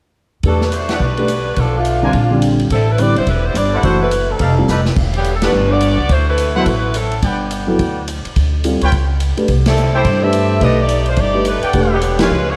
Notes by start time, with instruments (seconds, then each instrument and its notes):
0.43 upright bass E2, saxophone section G3 D4 F#4 A4, grand piano A3 D4 G4 B4, kick, ride
0.61 saxophone section G3 D4 F#4 B4, snare
0.72 saxophone section A3 D4 F#4 C5, hi-hat pedal, ride
0.89 saxophone section G3, trumpet section D4 G4 A4 F#5, snare, ride
0.93 saxophone section D4 F#4 B4
1.00 upright bass B1, kick
1.17 grand piano A3 D4 G4 B4, ride
1.28 hi-hat pedal, ride
1.56 upright bass B1, saxophone section F3 B3 D4 A4, kick, ride
1.77 saxophone section A3 B3 D4 F4
1.85 hi-hat pedal, ride
2.02 grand piano D3 G3 C4 F4, trumpet section D4 A#4 C5 G#5
2.13 upright bass A#1, kick, ride
2.31 grand piano D3 G3 C4 D4
2.42 hi-hat pedal, ride
2.60 ride
2.70 upright bass A1, saxophone section G3 C4 E4 A4, kick, ride
2.90 saxophone section G3 C4 E4 B4
2.98 grand piano D3 G3 C4 E4, saxophone section C4 G4 B4 D5, hi-hat pedal, ride
3.16 upright bass G1, saxophone section G3 B3 E4 C5, ride
3.27 upright bass E1, saxophone section G3 C4 E4 B4, kick, ride
3.45 saxophone section G3 B3 E4 C5
3.54 upright bass G1, saxophone section C4 G4 B4 D5, hi-hat pedal, ride
3.73 trumpet section E4 A4 C5 F#5
3.83 upright bass F#1, grand piano E3 A3 D4 F#4, saxophone section A3 E4 F#4 C5, kick, ride
4.02 saxophone section A3 E4 F#4 B4
4.11 hi-hat pedal, ride
4.30 saxophone section G3 C4 D#4 A4
4.39 upright bass F1, trumpet section D#4 G4 A4 F5, kick, ride
4.58 grand piano G3 C4 F4 A4
4.68 upright bass F1, trumpet section D#4 G4 A4 B4, snare, hi-hat pedal
4.86 snare
4.96 upright bass E1, kick, crash
5.13 saxophone section D3 F#3 B3 G4, ride
5.24 hi-hat pedal, ride
5.35 saxophone section A4
5.42 saxophone section G3 D4 F#4 B4, grand piano A3 D4 G4 B4, trumpet section D4 G4 A4 F#5, snare, ride
5.52 upright bass G1
5.71 saxophone section B3 F#4 G4 D5
5.81 hi-hat pedal, ride
5.98 upright bass C#2
6.09 upright bass D2, saxophone section A3 E4 F#4 C5, kick, ride
6.28 saxophone section A3 E4 F#4 B4
6.38 hi-hat pedal, ride
6.55 grand piano F#3 B3 E4 A4, saxophone section F#3 C4 E4 A4, trumpet section E4 B4 C5 F#5
6.66 upright bass A1, saxophone section A3 E4 F#4 B4, kick, ride
6.94 saxophone section F#3 C4 E4 A4, hi-hat pedal, ride
7.12 ride
7.23 upright bass G1, trumpet section B4 D5 F#5 G5, kick, ride
7.51 hi-hat pedal, ride
7.67 grand piano F#3 B3 E4 A4
7.79 upright bass D2, kick, ride
8.08 hi-hat pedal, ride
8.25 muted upright bass stroke, ride
8.36 upright bass D2, kick, ride
8.64 grand piano G3 C4 F4 A4, hi-hat pedal, ride
8.81 upright bass D2, trumpet section F4 B4 C#5 G5, ride
8.92 upright bass C#2, kick, ride
9.20 hi-hat pedal, ride
9.37 grand piano A3 D4 G4 B4, muted upright bass stroke, ride
9.48 upright bass C2, kick, ride
9.66 saxophone section G3 C4 E4 A4, snare, ride
9.77 hi-hat pedal
9.94 saxophone section A3 E4 G4 C5, trumpet section E4 A4 C5 G5
10.04 upright bass G2, kick, ride
10.23 grand piano A3 D4 G4 B4, saxophone section C4 G4 A4 E5
10.33 hi-hat pedal, ride
10.60 upright bass B1, grand piano A3 D4 G4 B4, saxophone section A3 D4 G4 D#5, kick, ride
10.80 saxophone section A3 D#4 G4 D5
10.89 hi-hat pedal, ride
11.06 saxophone section A3 D4 F4 C5, ride
11.16 upright bass G1, saxophone section A3 D#4 G4 D5, kick, ride
11.34 grand piano A3 D4 G4 B4
11.45 saxophone section A3 D#4 G4 B4, hi-hat pedal, ride
11.62 trumpet section A4 D5 F#5 G5, muted upright bass stroke, ride
11.73 upright bass E1, grand piano A3 D4 G4 B4, kick, ride
11.93 saxophone section D3 F#3 B3 G4
12.01 hi-hat pedal, ride
12.19 grand piano F3 A#3 D#4 G4, saxophone section G#3 C#4 F4 B4, trumpet section F4 B4 C#5 G#5, snare, ride
12.30 upright bass C#2
12.49 saxophone section B3 F4 G#4 C#5